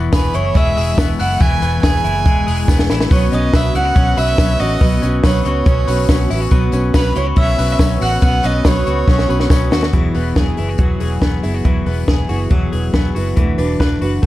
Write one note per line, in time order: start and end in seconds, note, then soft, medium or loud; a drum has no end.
0.00 1.40 E3 medium
0.00 0.98 B3 medium
0.12 0.30 E1 medium
0.12 0.76 G#4 medium
0.12 0.36 B4 medium
0.12 0.33 B5 medium
0.12 kick loud
0.12 snare loud
0.12 hi-hat pedal medium
0.12 open hi-hat medium
0.12 tambourine medium
0.33 0.52 F#1 medium
0.33 1.19 E4 medium
0.33 0.58 C#5 medium
0.33 0.56 C#6 medium
0.33 hi-hat pedal medium
0.33 open hi-hat medium
0.33 tambourine soft
0.55 0.73 E1 loud
0.55 2.25 G#3 medium
0.55 0.98 E5 loud
0.55 0.99 E6 medium
0.55 kick loud
0.55 hi-hat pedal medium
0.55 open hi-hat medium
0.55 tambourine soft
0.77 0.95 E1 loud
0.77 1.82 G#4 medium
0.77 hi-hat pedal medium
0.77 open hi-hat medium
0.77 tambourine soft
0.98 1.15 E1 loud
0.98 1.62 B3 medium
0.98 kick loud
0.98 snare loud
0.98 tambourine loud
1.19 1.37 F#1 medium
1.19 2.03 E4 medium
1.19 1.42 F#5 loud
1.19 1.39 F#6 medium
1.19 hi-hat pedal medium
1.19 open hi-hat medium
1.19 tambourine medium
1.41 1.58 E1 loud
1.41 3.11 E3 medium
1.41 1.83 G#5 loud
1.41 1.83 G#6 medium
1.41 kick loud
1.41 hi-hat pedal medium
1.41 open hi-hat medium
1.41 tambourine medium
1.62 1.79 E1 loud
1.62 2.68 B3 medium
1.62 hi-hat pedal medium
1.62 open hi-hat medium
1.62 tambourine medium
1.83 2.01 E1 loud
1.83 2.46 G#4 medium
1.83 2.64 G#5 loud
1.83 2.65 G#6 medium
1.83 kick loud
1.83 snare loud
1.83 hi-hat pedal medium
1.83 open hi-hat medium
1.83 tambourine medium
2.04 2.26 F#1 medium
2.04 2.89 E4 medium
2.04 hi-hat pedal medium
2.04 open hi-hat medium
2.25 2.43 E1 loud
2.25 3.11 G#3 medium
2.25 kick loud
2.25 hi-hat pedal medium
2.25 open hi-hat medium
2.47 2.65 E1 medium
2.47 3.15 G#4 medium
2.47 hi-hat pedal medium
2.47 open hi-hat medium
2.47 tambourine medium
2.68 2.86 E1 loud
2.68 3.32 B3 medium
2.68 kick loud
2.68 snare medium
2.68 tambourine loud
2.79 snare medium
2.90 3.07 A1 medium
2.90 3.15 E4 medium
2.90 snare medium
2.90 tambourine medium
3.01 snare medium
3.10 3.28 B1 loud
3.10 3.32 B2 medium
3.10 3.32 F#3 medium
3.10 3.32 B3 medium
3.10 3.32 C#4 medium
3.10 3.31 F#4 medium
3.10 3.32 C#5 medium
3.10 3.32 C#6 medium
3.10 kick loud
3.10 hi-hat pedal medium
3.10 open hi-hat medium
3.10 tambourine medium
3.32 3.50 B1 loud
3.32 3.53 B3 soft
3.32 3.53 C#4 medium
3.32 3.53 F#4 medium
3.32 3.56 D#5 medium
3.32 3.53 D#6 medium
3.32 hi-hat pedal medium
3.32 open hi-hat medium
3.32 tambourine medium
3.53 3.71 B1 loud
3.53 3.75 B2 medium
3.53 3.75 F#3 medium
3.53 3.75 B3 medium
3.53 3.74 C#4 medium
3.53 3.73 F#4 loud
3.53 4.17 B4 medium
3.53 3.76 E5 loud
3.53 3.76 E6 medium
3.53 kick loud
3.53 snare loud
3.53 hi-hat pedal medium
3.53 open hi-hat medium
3.53 tambourine medium
3.74 3.92 C#2 medium
3.74 3.95 B3 soft
3.74 3.96 C#4 medium
3.74 3.85 E4 medium
3.74 3.96 F#4 medium
3.74 4.19 F#5 loud
3.74 4.15 F#6 loud
3.74 hi-hat pedal medium
3.74 open hi-hat medium
3.74 tambourine soft
3.85 4.59 F#4 medium
3.96 4.14 B1 loud
3.96 4.17 F#3 medium
3.96 4.18 B3 medium
3.96 4.17 C#4 medium
3.96 4.16 F#4 medium
3.96 kick loud
3.96 hi-hat pedal medium
3.96 open hi-hat medium
4.17 4.35 B1 loud
4.17 4.38 B3 soft
4.17 4.38 C#4 soft
4.17 4.39 F#4 soft
4.17 5.23 B4 medium
4.17 4.62 E5 loud
4.17 4.61 E6 medium
4.17 hi-hat pedal medium
4.17 open hi-hat medium
4.17 tambourine medium
4.38 4.56 B1 loud
4.38 4.60 B2 medium
4.38 4.60 F#3 medium
4.38 4.60 B3 medium
4.38 4.60 C#4 loud
4.38 4.59 F#4 medium
4.38 kick loud
4.38 snare loud
4.38 hi-hat pedal medium
4.38 open hi-hat medium
4.38 tambourine loud
4.60 4.78 A1 medium
4.60 4.81 B3 soft
4.60 4.82 C#4 medium
4.60 4.82 F#4 medium
4.60 5.03 D#5 loud
4.60 5.03 D#6 medium
4.60 hi-hat pedal medium
4.60 open hi-hat medium
4.60 tambourine medium
4.81 4.99 B1 loud
4.81 5.03 B2 medium
4.81 5.03 F#3 medium
4.81 5.03 B3 medium
4.81 5.03 C#4 medium
4.81 5.02 F#4 medium
4.81 kick loud
4.81 hi-hat pedal medium
4.81 open hi-hat medium
4.81 tambourine medium
5.02 5.20 B1 loud
5.02 5.24 B3 soft
5.02 5.24 C#4 medium
5.02 5.24 F#4 medium
5.02 hi-hat pedal medium
5.02 open hi-hat medium
5.02 tambourine medium
5.23 5.41 B1 loud
5.23 5.45 B2 medium
5.23 5.46 F#3 medium
5.23 5.46 B3 medium
5.23 5.45 C#4 medium
5.23 5.43 F#4 medium
5.23 5.87 B4 medium
5.23 5.44 C#5 medium
5.23 5.44 C#6 medium
5.23 kick loud
5.23 snare loud
5.23 hi-hat pedal medium
5.23 open hi-hat medium
5.23 tambourine medium
5.45 5.63 C#2 medium
5.45 5.66 B3 soft
5.45 5.67 C#4 medium
5.45 5.66 F#4 medium
5.45 6.27 C#5 medium
5.45 6.27 C#6 medium
5.45 hi-hat pedal medium
5.45 open hi-hat medium
5.66 5.84 B1 loud
5.66 5.88 F#3 medium
5.66 5.88 B3 medium
5.66 5.88 C#4 medium
5.66 5.87 F#4 medium
5.66 kick loud
5.66 hi-hat pedal medium
5.66 open hi-hat medium
5.87 6.06 B1 loud
5.87 6.10 B3 soft
5.87 6.10 C#4 medium
5.87 6.10 F#4 medium
5.87 6.94 B4 medium
5.87 hi-hat pedal medium
5.87 open hi-hat medium
5.87 tambourine medium
6.09 6.27 B1 loud
6.09 6.31 B2 medium
6.09 6.31 F#3 loud
6.09 6.31 B3 loud
6.09 6.31 C#4 medium
6.09 6.30 F#4 loud
6.09 kick loud
6.09 snare loud
6.09 tambourine medium
6.30 6.48 A1 medium
6.30 6.51 B3 medium
6.30 6.52 C#4 medium
6.30 6.41 E4 medium
6.30 6.52 F#4 medium
6.30 hi-hat pedal medium
6.30 open hi-hat medium
6.30 tambourine medium
6.41 7.15 F#4 medium
6.51 6.69 B1 loud
6.51 6.73 B2 medium
6.51 6.73 F#3 loud
6.51 6.74 B3 medium
6.51 6.72 C#4 loud
6.51 6.71 F#4 medium
6.51 kick loud
6.51 hi-hat pedal medium
6.51 open hi-hat medium
6.51 tambourine soft
6.72 6.90 B1 loud
6.72 6.94 B3 medium
6.72 6.94 C#4 medium
6.72 6.94 F#4 medium
6.72 hi-hat pedal medium
6.72 open hi-hat medium
6.72 tambourine medium
6.94 7.16 F#3 medium
6.94 7.16 B3 medium
6.94 7.15 C#4 medium
6.94 7.14 F#4 medium
6.94 7.14 B4 medium
6.94 7.58 B4 medium
6.94 7.15 B5 medium
6.94 kick loud
6.94 snare loud
6.94 hi-hat pedal medium
6.94 open hi-hat medium
6.94 tambourine medium
7.15 7.33 C#2 medium
7.15 7.36 B3 soft
7.15 7.37 C#4 medium
7.15 7.26 E4 medium
7.15 7.37 F#4 medium
7.15 7.26 C#5 medium
7.15 7.26 C#6 medium
7.15 hi-hat pedal medium
7.15 open hi-hat medium
7.15 tambourine soft
7.26 8.00 F#4 medium
7.36 7.54 B1 loud
7.36 7.58 F#3 medium
7.36 7.58 B3 medium
7.36 7.57 C#4 medium
7.36 7.56 F#4 medium
7.36 7.77 E5 loud
7.36 7.77 E6 medium
7.36 kick loud
7.36 hi-hat pedal medium
7.36 open hi-hat medium
7.57 7.76 B1 loud
7.57 7.78 B3 soft
7.57 7.78 C#4 soft
7.57 7.79 F#4 medium
7.57 8.65 B4 medium
7.57 hi-hat pedal medium
7.57 open hi-hat medium
7.57 tambourine medium
7.78 7.97 B1 loud
7.78 8.01 B2 medium
7.78 8.01 F#3 medium
7.78 8.01 B3 medium
7.78 8.00 C#4 medium
7.78 7.99 F#4 loud
7.78 kick loud
7.78 snare loud
7.78 tambourine loud
8.00 8.19 A1 medium
8.00 8.21 B3 medium
8.00 8.21 C#4 soft
8.00 8.21 F#4 medium
8.00 8.22 F#5 loud
8.00 8.21 F#6 medium
8.00 hi-hat pedal medium
8.00 open hi-hat medium
8.00 tambourine medium
8.21 8.40 B1 loud
8.21 8.43 B2 medium
8.21 8.43 F#3 medium
8.21 8.44 B3 medium
8.21 8.44 C#4 loud
8.21 8.42 F#4 loud
8.21 8.47 F#5 loud
8.21 8.42 F#6 medium
8.21 kick loud
8.21 hi-hat pedal medium
8.21 open hi-hat medium
8.21 tambourine medium
8.43 8.61 B1 medium
8.43 8.64 B3 soft
8.43 8.64 C#4 medium
8.43 8.65 F#4 medium
8.43 8.69 D#5 loud
8.43 8.66 D#6 medium
8.43 hi-hat pedal medium
8.43 open hi-hat medium
8.43 tambourine medium
8.64 8.82 B1 medium
8.64 8.86 B2 medium
8.64 8.86 F#3 loud
8.64 8.87 B3 medium
8.64 8.86 C#4 medium
8.64 8.85 F#4 loud
8.64 9.29 B4 medium
8.64 9.52 C#5 medium
8.64 9.51 C#6 medium
8.64 kick loud
8.64 snare loud
8.64 hi-hat pedal medium
8.64 open hi-hat medium
8.64 tambourine medium
8.86 9.04 C#2 medium
8.86 9.07 B3 medium
8.86 9.08 C#4 medium
8.86 9.08 F#4 medium
8.86 hi-hat pedal medium
8.86 open hi-hat medium
8.86 tambourine soft
9.07 9.25 B1 loud
9.07 9.29 F#3 medium
9.07 9.29 B3 medium
9.07 9.29 C#4 medium
9.07 9.27 F#4 medium
9.07 kick loud
9.07 snare medium
9.19 snare medium
9.28 9.47 B1 loud
9.28 9.49 B3 medium
9.28 9.50 C#4 medium
9.28 9.50 F#4 medium
9.28 10.37 B4 medium
9.28 tambourine medium
9.40 snare medium
9.49 9.68 B1 loud
9.49 9.71 B2 medium
9.49 9.72 F#3 medium
9.49 9.72 B3 loud
9.49 9.71 C#4 loud
9.49 9.70 F#4 loud
9.49 kick loud
9.49 snare medium
9.49 tambourine loud
9.71 9.90 D#2 medium
9.71 9.93 B3 soft
9.71 9.94 C#4 medium
9.71 9.93 F#4 medium
9.71 snare loud
9.71 tambourine medium
9.83 snare medium
9.93 10.11 E1 medium
9.93 10.14 E3 medium
9.93 10.15 F#3 medium
9.93 10.15 B3 medium
9.93 10.15 E4 medium
9.93 10.13 G#4 medium
9.93 kick loud
9.93 closed hi-hat medium
10.15 10.33 E1 medium
10.15 10.35 B3 soft
10.15 10.36 E4 soft
10.15 10.36 G#4 medium
10.15 open hi-hat medium
10.36 10.54 E1 medium
10.36 10.58 F#3 medium
10.36 10.58 B3 medium
10.36 10.57 E4 medium
10.36 10.56 G#4 medium
10.36 kick loud
10.36 snare loud
10.36 closed hi-hat medium
10.57 10.75 F#1 medium
10.57 10.79 B3 soft
10.57 10.79 E4 soft
10.57 10.79 G#4 medium
10.57 open hi-hat medium
10.69 11.43 F#4 soft
10.78 10.97 E1 loud
10.78 11.01 E3 medium
10.78 11.01 F#3 medium
10.78 11.01 B3 medium
10.78 11.00 E4 medium
10.78 10.99 G#4 medium
10.78 kick loud
10.78 closed hi-hat medium
11.00 11.18 E1 medium
11.00 11.21 B3 soft
11.00 11.22 E4 soft
11.00 11.22 G#4 medium
11.00 open hi-hat medium
11.21 11.39 E1 medium
11.21 11.43 F#3 medium
11.21 11.44 B3 medium
11.21 11.43 E4 medium
11.21 11.42 G#4 medium
11.21 kick loud
11.21 snare loud
11.21 closed hi-hat medium
11.43 11.61 F#1 medium
11.43 11.64 B3 soft
11.43 11.65 E4 soft
11.43 11.65 G#4 medium
11.43 open hi-hat medium
11.54 12.28 F#4 soft
11.65 11.83 E1 loud
11.65 11.86 E3 medium
11.65 11.86 F#3 medium
11.65 11.87 B3 medium
11.65 11.86 E4 medium
11.65 11.85 G#4 medium
11.65 kick loud
11.65 closed hi-hat medium
11.86 12.04 E1 medium
11.86 12.06 B3 soft
11.86 12.07 E4 soft
11.86 12.08 G#4 soft
11.86 open hi-hat medium
12.07 12.26 E1 medium
12.07 12.29 F#3 medium
12.07 12.29 B3 medium
12.07 12.29 E4 medium
12.07 12.28 G#4 medium
12.07 kick loud
12.07 snare loud
12.07 closed hi-hat medium
12.29 12.47 F#1 medium
12.29 12.50 B3 soft
12.29 12.51 E4 medium
12.29 13.15 F#4 medium
12.29 12.51 G#4 medium
12.29 open hi-hat medium
12.50 12.69 E1 medium
12.50 12.72 E3 medium
12.50 12.73 F#3 medium
12.50 12.73 B3 medium
12.50 12.72 E4 medium
12.50 12.71 G#4 medium
12.50 kick loud
12.50 closed hi-hat medium
12.72 12.90 E1 medium
12.72 12.93 B3 soft
12.72 12.94 E4 soft
12.72 12.94 G#4 medium
12.72 open hi-hat medium
12.93 13.11 E1 medium
12.93 13.15 F#3 medium
12.93 13.16 B3 medium
12.93 13.15 E4 medium
12.93 13.14 G#4 medium
12.93 kick loud
12.93 snare loud
12.93 closed hi-hat medium
13.15 13.33 F#1 medium
13.15 13.37 B3 soft
13.15 13.38 E4 medium
13.15 14.01 F#4 medium
13.15 13.37 G#4 medium
13.15 open hi-hat medium
13.37 13.55 E1 medium
13.37 13.58 E3 medium
13.37 13.59 A3 medium
13.37 13.59 D4 medium
13.37 13.58 F#4 medium
13.37 13.57 B4 medium
13.37 kick loud
13.37 closed hi-hat medium
13.58 13.76 E1 medium
13.58 13.79 D4 soft
13.58 13.80 F#4 medium
13.58 13.80 B4 medium
13.58 open hi-hat medium
13.80 13.98 E1 medium
13.80 14.01 A3 medium
13.80 14.02 D4 medium
13.80 14.02 F#4 medium
13.80 14.01 B4 medium
13.80 kick loud
13.80 snare loud
13.80 closed hi-hat medium
14.01 14.19 F#1 medium
14.01 14.23 D4 soft
14.01 14.23 F#4 medium
14.01 14.23 B4 medium
14.01 open hi-hat medium
14.23 14.26 E1 loud
14.23 14.26 A3 medium
14.23 kick loud
14.23 closed hi-hat medium